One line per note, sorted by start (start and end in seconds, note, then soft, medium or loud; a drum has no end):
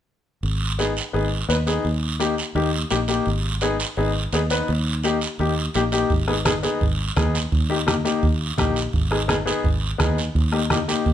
0.43 1.00 G#1 medium
0.43 long guiro medium
0.79 0.91 B3 medium
0.79 0.91 D#4 medium
0.79 0.92 G#4 medium
0.79 short guiro medium
0.97 short guiro medium
1.13 1.42 G#1 medium
1.13 1.26 B3 medium
1.13 1.26 D#4 medium
1.13 1.27 G#4 medium
1.13 long guiro soft
1.49 1.77 D#2 medium
1.49 1.55 B3 medium
1.49 1.56 D#4 medium
1.49 1.56 B4 medium
1.49 short guiro medium
1.67 1.85 B3 medium
1.67 1.85 D#4 medium
1.67 1.85 G#4 medium
1.67 short guiro medium
1.85 2.41 D#2 medium
1.85 long guiro medium
2.20 2.32 A#3 medium
2.20 2.33 D#4 medium
2.20 2.33 G4 medium
2.20 short guiro medium
2.38 short guiro medium
2.55 2.84 D#2 medium
2.55 2.68 A#3 medium
2.55 2.68 D#4 medium
2.55 2.68 G4 medium
2.55 long guiro medium
2.91 3.20 A#1 medium
2.91 2.97 A#3 medium
2.91 2.97 D#4 medium
2.91 2.97 G4 medium
2.91 short guiro medium
3.08 3.26 A#3 medium
3.08 3.27 D#4 medium
3.08 3.27 G4 medium
3.08 short guiro medium
3.26 3.83 G#1 medium
3.26 long guiro medium
3.61 3.74 B3 medium
3.61 3.74 D#4 medium
3.61 3.75 G#4 medium
3.61 short guiro medium
3.80 short guiro medium
3.97 4.26 G#1 medium
3.97 4.10 B3 medium
3.97 4.10 D#4 medium
3.97 4.10 G#4 medium
3.97 long guiro medium
4.32 4.61 D#2 medium
4.32 4.39 B3 medium
4.32 4.40 D#4 medium
4.32 4.40 G#4 medium
4.32 short guiro medium
4.50 4.68 B3 medium
4.50 4.69 D#4 medium
4.50 4.69 B4 medium
4.50 short guiro medium
4.68 5.25 D#2 medium
4.68 long guiro medium
5.04 5.16 A#3 medium
5.04 5.17 D#4 medium
5.04 5.17 G4 medium
5.04 short guiro medium
5.21 short guiro medium
5.39 5.68 D#2 medium
5.39 5.52 A#3 medium
5.39 5.52 D#4 medium
5.39 5.52 G4 medium
5.39 long guiro medium
5.74 6.03 A#1 medium
5.74 5.81 A#3 medium
5.74 5.81 D#4 medium
5.74 5.82 G4 medium
5.74 short guiro medium
5.92 6.10 A#3 medium
5.92 6.10 D#4 medium
5.92 6.10 G4 medium
5.92 short guiro medium
6.10 6.67 G#1 medium
6.10 bombo low medium
6.10 high conga soft
6.10 long guiro medium
6.28 6.34 B3 medium
6.28 6.34 D#4 medium
6.28 6.34 G#4 medium
6.28 bombo rim medium
6.45 6.52 B3 medium
6.45 6.52 D#4 medium
6.45 6.52 G#4 medium
6.45 bombo rim medium
6.45 high conga medium
6.45 short guiro medium
6.63 6.82 B3 medium
6.63 6.82 D#4 medium
6.63 6.82 G#4 medium
6.63 short guiro medium
6.81 7.10 G#1 medium
6.81 bombo low medium
6.81 high conga soft
6.81 long guiro medium
7.16 7.45 D#2 medium
7.16 7.35 B3 medium
7.16 7.35 D#4 medium
7.16 7.35 G#4 medium
7.16 bombo low medium
7.16 bombo rim medium
7.16 high conga medium
7.16 short guiro medium
7.35 short guiro medium
7.52 8.09 D#2 medium
7.52 bombo low medium
7.52 high conga soft
7.52 long guiro medium
7.70 7.76 A#3 medium
7.70 7.76 D#4 medium
7.70 7.76 G4 medium
7.87 7.93 A#3 medium
7.87 7.93 D#4 medium
7.87 7.93 G4 medium
7.87 bombo rim medium
7.87 high conga medium
7.87 short guiro medium
8.05 8.23 A#3 medium
8.05 8.23 D#4 medium
8.05 8.24 G4 medium
8.05 short guiro medium
8.23 8.51 D#2 medium
8.23 bombo low medium
8.23 high conga soft
8.23 long guiro medium
8.58 8.87 A#1 medium
8.58 8.76 A#3 medium
8.58 8.77 D#4 medium
8.58 8.77 G4 medium
8.58 bombo low medium
8.58 bombo rim medium
8.58 high conga medium
8.58 short guiro medium
8.76 short guiro medium
8.93 9.50 G#1 medium
8.93 bombo low medium
8.93 high conga soft
8.93 long guiro medium
9.11 9.17 B3 medium
9.11 9.17 D#4 medium
9.11 9.18 G#4 medium
9.11 bombo rim medium
9.28 9.35 B3 medium
9.28 9.35 D#4 medium
9.28 9.35 G#4 medium
9.28 bombo rim medium
9.28 high conga medium
9.28 short guiro medium
9.46 9.65 B3 medium
9.46 9.65 D#4 medium
9.46 9.65 G#4 medium
9.46 short guiro medium
9.64 9.93 G#1 medium
9.64 bombo low medium
9.64 high conga soft
9.64 long guiro medium
9.98 10.28 D#2 medium
9.98 10.18 B3 medium
9.98 10.18 D#4 medium
9.98 10.18 G#4 medium
9.98 bombo low medium
9.98 bombo rim medium
9.98 high conga medium
9.98 short guiro medium
10.18 short guiro medium
10.35 10.92 D#2 medium
10.35 bombo low medium
10.35 high conga soft
10.35 long guiro medium
10.52 10.59 A#3 medium
10.52 10.59 D#4 medium
10.52 10.59 G4 medium
10.52 bombo rim medium
10.70 10.77 A#3 medium
10.70 10.77 D#4 medium
10.70 10.77 G4 medium
10.70 bombo rim medium
10.70 high conga medium
10.70 short guiro medium
10.88 11.07 A#3 medium
10.88 11.07 D#4 medium
10.88 11.07 G4 medium
10.88 short guiro medium
11.06 11.13 D#2 medium
11.06 bombo low medium
11.06 high conga soft
11.06 long guiro medium